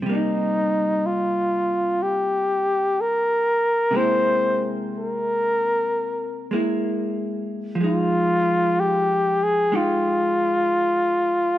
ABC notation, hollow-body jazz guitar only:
X:1
M:4/4
L:1/8
Q:"Swing" 1/4=62
K:Cphr
V:1 name="Hollow-body jazz guitar"
[C,G,B,E]8 | [C,^G,B,=E]4- [C,G,B,E] [G,B,E]3 | [F,A,E]4 [A,EG]4 |]